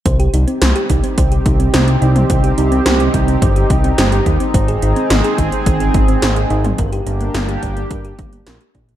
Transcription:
<<
  \new Staff \with { instrumentName = "Synth arpeggio sound" } { \time 4/4 \key c \minor \tempo 4 = 107 c''16 g'16 ees'16 c'16 c''16 g'16 ees'16 c'16 c''16 g'16 ees'16 c'16 c''16 g'16 ees'16 c'16 | c''16 g'16 ees'16 c'16 c''16 g'16 ees'16 c'16 c''16 g'16 ees'16 c'16 c''16 g'16 ees'16 c'16 | c''16 aes'16 ees'16 c'16 c''16 aes'16 ees'16 c'16 c''16 aes'16 ees'16 c'16 c''16 aes'16 ees'16 c'16 | bes'16 g'16 d'16 bes16 bes'16 g'16 d'16 bes16 bes'16 g'16 d'16 bes16 bes'16 g'16 d'16 bes16 | }
  \new Staff \with { instrumentName = "Analog synth pad" } { \time 4/4 \key c \minor << { <c' g'>1~ | <c' g'>1 | <c' aes'>1 | <bes g'>1 | } \\ { ees'1~ | ees'1~ | ees'1 | d'1 | } >> }
  \new Staff \with { instrumentName = "Analog synth bass" } { \clef bass \time 4/4 \key c \minor c,8 c,8 c,8 c,8 c,8 c,8 c,8 c,8 | c,8 c,8 c,8 c,8 g,,8 c,8 g,,8 ees,8 | aes,,8 aes,,8 aes,,8 aes,,8 aes,,8 aes,,8 aes,,8 aes,,8 | g,,8 g,,8 g,,8 g,,8 g,8 g,,8 bes,,8 bes,,8 | }
  \new DrumStaff \with { instrumentName = "Drums" } \drummode { \time 4/4 <hh bd>16 hh16 hh16 hh16 <hh sn>16 hh16 <hh bd>16 hh16 <hh bd>16 hh16 <hh bd>16 hh16 <hh sn>16 hh16 hh16 <hh toml>16 | <hh bd>16 hh16 hh16 hh16 <hh sn>16 hh16 <hh bd>16 hh16 <hh bd>16 hh16 <hh bd>16 hh16 <hh sn>16 hh16 <hh bd>16 hh16 | <hh bd>16 hh16 hh16 hh16 <hh sn>16 hh16 <hh bd>16 hh16 <hh bd>16 hh16 <hh bd>16 hh16 <hh sn>16 hh16 hh16 <hh toml>16 | <hh bd>16 hh16 hh16 hh16 <hh sn>16 hh16 <hh bd>16 hh16 <hh bd>16 hh16 <hh bd>16 hh16 <hh sn>16 hh16 <hh bd>16 hh16 | }
>>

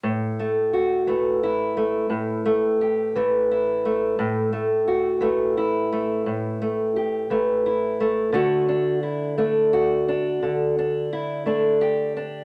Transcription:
\new Staff \with { instrumentName = "Steel-string acoustic guitar" } { \time 12/8 \key d \major \tempo 4. = 58 << { r8 a8 fis'8 a8 e'8 a4 a8 g'8 a8 e'8 a8 | r8 a8 fis'8 a8 e'8 a4 a8 g'8 a8 e'8 a8 | <a d' fis'>8 d'8 e'8 d'8 fis'8 d'4 d'8 e'8 d'8 g'8 d'8 | } \\ { a,4. e4. a,4. e4. | a,4. e4. a,4. e4. | d4. a4. d4. a4. | } >> }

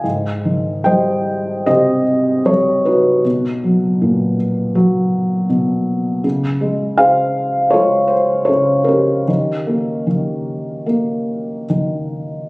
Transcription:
<<
  \new Staff \with { instrumentName = "Felt piano" } { \time 4/4 \key aes \major \tempo 4 = 76 << { r4 g''4 ees''4 des''8 ces''8~ | ces''4. r2 r8 | r4 f''4 des''8 c''8 des''8 bes'8~ | bes'2. r4 | } \\ { r4 <c'' ees''>4 <g' c''>4. <ees' ges'>8~ | <ees' ges'>4. r2 r8 | r4 <aes' c''>4 <f' aes'>4. <des' g'>8~ | <des' g'>2. r4 | } >> }
  \new Staff \with { instrumentName = "Felt piano" } { \clef bass \time 4/4 \key aes \major aes,8 ees8 g4 c4 g4 | b,8 fis8 ais,4 fis4 b,4 | des8 aes8 des4 aes4 des4 | ees8 bes8 ees4 bes4 ees4 | }
>>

